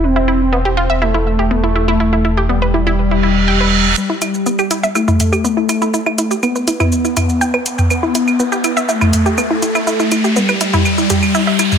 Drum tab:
HH |----------------|----------------|--x---x---x---x-|--x---x---x---x-|
SH |----------------|----------------|x-xxxxxxxxxxx-xx|x-xxxxxxxxxxx-xx|
CL |----------------|----------------|--x--x--x--x--x-|-x--x--x--x--x--|
T2 |----------------|----------------|---------oo-----|-------o--o----o|

HH |--x---x---x---x-|--x---x---x---x-|
SH |x-xxxxxxxxxxx-xx|xxxxxxxxxxxxx-xx|
CL |x--x--x--x--x--x|--x--x--x--x--x-|
T2 |---------oo-----|-------o--o----o|